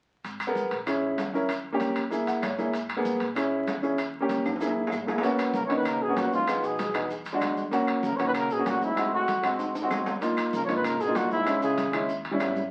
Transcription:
0.24 G#1, high conga, high timbale, maracas
0.40 high conga, high timbale, claves, maracas
0.47 B3 G#4 A#4
0.55 high conga, maracas
0.71 A#1, high conga, high timbale, maracas
0.86 C#4 E4 G#4, high conga, high timbale, claves, maracas
1.02 high conga
1.17 D#2, high conga, high timbale, low timbale, maracas
1.33 C#4 E4 A#4, high conga, maracas
1.49 high conga, high timbale, claves, maracas
1.64 high conga
1.72 A#3 C#4 G4
1.80 high conga, high timbale, maracas
1.96 F#2, high timbale, claves, maracas
2.10 A#3 E4 G#4, high conga, maracas
2.27 F#2 F#5, high conga, high timbale, maracas
2.42 G#2 C#5, high conga, high timbale, low timbale, claves, maracas
2.58 A#3 E4 G#4, high conga, maracas
2.73 high conga, high timbale, maracas
2.89 high conga, high timbale, claves
2.96 A#3 B3 G#4
3.05 high conga, maracas
3.20 A#1, high conga, high timbale, maracas
3.35 C#4 E4 G#4, high conga, high timbale, claves, maracas
3.52 high conga
3.67 D#2, high conga, high timbale, low timbale, maracas
3.82 C#4 E4 G#4, maracas
3.98 high conga, high timbale, claves, maracas
4.14 high conga
4.20 A#3 C#4 G4
4.29 high conga, high timbale, maracas
4.45 F#2, high timbale, claves, maracas
4.56 high timbale
4.61 A#3 E4 G#4, high conga, maracas
4.66 high timbale
4.76 high conga
4.87 low timbale
4.92 G#2, high conga, claves, maracas
5.06 A#3 E4 G#4, high conga, low timbale, maracas
5.18 A#3, low timbale
5.22 B3 C#4 F#4, high timbale, maracas
5.39 high conga, high timbale, claves, maracas
5.54 C#3 A#4, high conga, maracas
5.65 E3 C#5
5.69 D#2 A#3 B3 C#4 D#4, high conga, high timbale, maracas
5.76 D#3 B4
5.85 C#3 A#4, high conga, high timbale, claves, maracas
6.01 B2 G#4, high conga
6.08 A#3 B3 C#4 F#4
6.16 F2 A#2 F#4, high conga, high timbale, low timbale, maracas
6.32 G#2 F4, high conga, maracas
6.47 B3 D#4 G#4, high conga, high timbale, claves, maracas
6.64 B2 G#4, high conga, maracas
6.79 high conga, high timbale, maracas
6.94 E2 B3 D#4 G#4, high timbale, claves, maracas
7.10 high conga, maracas
7.25 high conga, high timbale, maracas
7.33 G#3 D4 F#4
7.41 D#2, high conga, high timbale, low timbale, claves, maracas
7.57 high conga, maracas
7.71 A#3 C#4 F#4, high conga, high timbale, maracas
7.87 high conga, high timbale, claves
8.03 C#3 A#4, high conga, maracas
8.15 E3 A#3 C#5
8.19 A#1 C#4 F#4, high timbale, maracas
8.25 D#3 B4
8.34 C#3 A#4, high conga, high timbale, claves, maracas
8.50 B2 G#4, high conga, maracas
8.57 A#3 C#4 F#4
8.66 D2 A#2 F#4, high conga, high timbale, low timbale, maracas
8.81 G#2 E4, high conga, maracas
8.96 G#3 C4 F#4, high conga, high timbale, claves, maracas
9.12 A2 F#4, high conga
9.28 high conga, high timbale, maracas
9.43 A1 G#3 C4 F#4, high conga, high timbale, claves, maracas
9.59 high conga, high timbale, maracas
9.75 high conga, high timbale, maracas
9.82 G#3 C4 F#4
9.91 C#2, high conga, low timbale, claves, maracas
10.06 high conga, low timbale, maracas
10.21 A#3 D#4 F4, high timbale, maracas
10.37 high conga, high timbale, claves, maracas
10.53 C#3 A#4, high conga, maracas
10.64 F3 A#3 C#5
10.68 G#1 D#4 F4, high timbale, maracas
10.75 D#3 B4
10.84 C#3 A#4, high conga, high timbale, claves, maracas
10.99 B2 G#4, high conga, maracas
11.07 A#3 D#4 F4
11.15 A#1 A#2 F#4, high conga, high timbale, low timbale, maracas
11.31 G#2 E4, high conga, maracas
11.45 G#3 C#4 E4, high timbale, claves, maracas
11.61 C#3 G#4, high conga, maracas
11.78 high conga, high timbale, maracas
11.92 D#2 G#3 C#4 E4, high conga, high timbale, claves, maracas
12.09 high conga, maracas
12.25 high conga, high timbale
12.31 G3 C#4 E4
12.40 G#1, high conga, high timbale, low timbale, claves, maracas
12.56 high conga, maracas

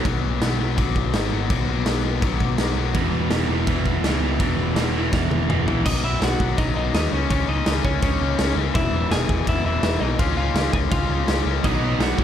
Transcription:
0.05 B1 B2 F#3 B3, kick, crash
0.24 B1
0.41 B1 B2 F#3 B3, snare, crash
0.59 B1 B2 F#3 B3
0.77 B1 B2 F#3 B3, kick, crash
0.96 kick
1.14 G#1 B2 F#3 B3, snare, crash
1.32 G#1 B2 F#3 B3
1.50 B1 B2 F#3 B3, kick, crash
1.67 B1
1.85 B1 B2 F#3 B3, snare, crash
2.03 B2 F#3 B3
2.22 B1 B2 F#3 B3, kick, crash
2.40 B1, kick
2.58 B1 B2 F#3 B3, snare, crash
2.76 B1 B2 F#3 B3
2.94 E1 E2 B2 E3, kick, crash
3.13 E1
3.31 E1 E2 B2 E3, snare, crash
3.48 E1 E2 B2 E3
3.67 E1 E2 B2 E3, kick, crash
3.86 kick
4.03 C#2 E2 B2 E3, snare, crash
4.20 C#2 E2 B2 E3
4.40 E1 E2 B2 E3, kick, crash
4.57 E1
4.76 E1 E2 B2 E3, snare, crash
4.94 E2 B2 E3
5.12 E1 E2 B2 E3, kick, snare
5.30 E1, high tom
5.48 E1 E2 B2 E3, mid tom
5.66 A#1 E2 B2 E3, floor tom
5.85 B1 B2 F#3 B3 D#4 D#5, kick, crash
6.03 B1 B2 F#3 B3 E4 E5
6.21 B1 B2 F#3 B3 F#4 F#5, snare, crash
6.40 B1 B2 F#3 B3, kick
6.58 B1 B2 F#3 B3 D#4 D#5, kick, crash
6.76 B1 B2 F#3 B3 D#4 D#5
6.94 D#2 B2 F#3 B3 D#4 D#5, snare, crash
7.11 C#2 C#3 G#3 C#4 C#5
7.29 C#2 C#3 G#3 C#4 C#5, kick, crash
7.47 C#2 C#3 G#3 C#4 D#4 D#5
7.66 C#2 C#3 G#3 C#4, snare, crash
7.84 C#2 C#3 G#3 C#4 C#5, kick
8.02 C#2 C#3 G#3 C#4 C#5, kick, crash
8.20 C#2 C#3 G#3 C#4
8.39 C#2 C#3 G#3 C#4, snare, crash
8.56 C#2 C#3 G#3 C#4
8.75 E1 E2 B2 E3 E4 E5, kick, crash
8.93 E1 E2 B2 E3
9.11 E1 E2 B2 E3 G#4 G#5, snare, crash
9.28 E1 E2 B2 E3, kick
9.47 E1 E2 B2 E3 E4 E5, kick, crash
9.65 E1 E2 B2 E3 E4 E5
9.83 E1 E2 B2 E3, snare, crash
10.01 B1 E2 B2 E3 D#4 D#5
10.19 C#2 C#3 G#3 C#4 F4 F5, kick, crash
10.36 C#2 C#3 G#3 C#4 F4 F5
10.54 C#2 C#3 G#3 C#4, snare, crash
10.73 C#2 C#3 G#3 C#4 G#4 G#5, kick
10.91 C#2 C#3 G#3 C#4 F4 F5, kick, crash
11.10 C#2 C#3 G#3 C#4
11.27 C#2 C#3 G#3 C#4, snare, crash
11.46 C#2 C#3 G#3 C#4
11.64 B1 B2 F#3 B3 D#4 D#5, kick, crash
11.80 B1 B2 F#3 B3
11.99 B1 B2 F#3 B3 F#4 F#5, snare, crash
12.18 B1 B2 F#3 B3, kick

